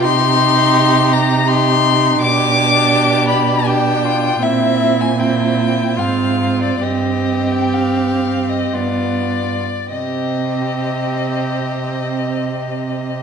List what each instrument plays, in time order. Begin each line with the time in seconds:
0.03 cello C3, viola D#4, violin G4 C6
1.13 violin A#5
1.48 viola D#4, violin G4 C6
2.21 cello B2, viola D4, violin G4 D6
3.28 violin B5
3.66 viola D4, violin G4 G5
4.05 violin F4
4.42 cello A#2, viola C4, violin E4 E5
5.01 violin G#5
5.17 viola C4, violin E4 G5
5.97 cello G#2, viola C4, violin F4 F5
6.63 violin D5
6.81 cello G2, viola C4, violin G4 D#5
7.52 violin G5
7.74 violin F5
8.50 violin D#5
8.73 cello G2, viola B3, violin F4 D5
9.92 cello C3, viola C4, violin G4 D#5